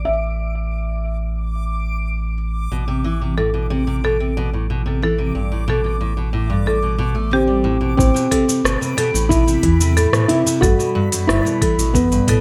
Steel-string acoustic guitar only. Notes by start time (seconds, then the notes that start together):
2.72 B2
2.88 C3
3.04 E3
3.21 C3
3.38 A2
3.54 B2
3.70 C3
3.87 C3
4.04 B2
4.20 C3
4.37 B2
4.53 A2
4.70 B2
4.86 C3
5.02 E3
5.18 C3
5.35 G2
5.52 A2
5.68 B2
5.84 B2
6.01 A2
6.17 B2
6.33 A2
6.50 G2
6.66 A2
6.82 B2
6.98 B2
7.15 A3
7.31 D3
7.47 G3
7.64 A2
7.81 B2
7.97 A2
8.14 B2
8.31 C3
8.48 C3
8.64 B2
8.81 C3
8.97 B2
9.14 A2
9.31 B2
9.47 C3
9.64 E3
9.81 C3
9.97 A2
10.13 B2
10.30 C3
10.46 C3
10.63 G2
10.79 B2
10.95 G2
11.12 F#2
11.29 G2
11.45 B2
11.62 E3
11.79 B2
11.95 F#2
12.12 G2
12.28 B2